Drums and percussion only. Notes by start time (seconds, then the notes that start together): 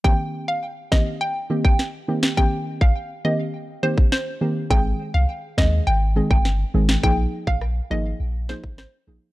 0.05 kick
0.92 kick, snare
1.65 kick
1.79 snare
2.23 snare
2.37 kick
2.81 kick
3.98 kick
4.12 snare
4.71 kick
5.58 kick, snare
6.31 kick
6.45 snare
6.89 snare
7.04 kick
7.47 kick
7.61 cross-stick
8.49 snare
8.64 kick
8.78 cross-stick, snare